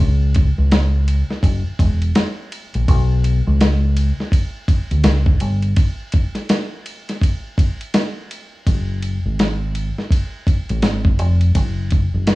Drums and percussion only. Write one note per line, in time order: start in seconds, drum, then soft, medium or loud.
0.35 kick medium
0.35 ride medium
0.72 snare loud
0.72 hi-hat pedal soft
0.72 ride medium
1.08 ride medium
1.30 snare soft
1.43 kick medium
1.43 ride medium
1.79 kick loud
1.79 ride medium
2.02 ride soft
2.15 snare loud
2.15 hi-hat pedal soft
2.15 ride medium
2.52 ride medium
2.74 ride soft
2.88 kick loud
2.88 ride medium
3.24 ride medium
3.61 snare loud
3.61 hi-hat pedal soft
3.61 ride medium
3.97 ride medium
4.20 snare soft
4.32 kick medium
4.32 ride medium
4.68 kick loud
4.68 ride medium
4.91 ride soft
5.04 snare loud
5.04 hi-hat pedal soft
5.04 ride medium
5.26 kick loud
5.40 ride medium
5.62 ride soft
5.76 kick loud
5.76 ride medium
6.12 kick medium
6.12 ride medium
6.35 snare soft
6.35 ride soft
6.49 snare loud
6.49 hi-hat pedal medium
6.49 ride medium
6.86 ride medium
7.09 snare soft
7.09 ride soft
7.21 kick medium
7.21 ride medium
7.58 kick loud
7.58 ride medium
7.81 ride soft
7.94 snare loud
7.94 hi-hat pedal soft
7.94 ride medium
8.31 ride medium
8.67 kick loud
8.67 ride medium
9.03 ride medium
9.39 snare medium
9.39 hi-hat pedal soft
9.39 ride medium
9.75 ride medium
9.98 snare soft
10.11 kick medium
10.11 ride medium
10.47 kick medium
10.47 ride medium
10.69 ride soft
10.82 snare medium
10.82 hi-hat pedal medium
10.82 ride medium
11.05 kick loud
11.19 ride medium
11.41 ride soft
11.55 kick loud
11.55 ride medium
11.90 kick medium
11.90 ride medium
12.27 snare loud
12.27 hi-hat pedal soft
12.27 ride medium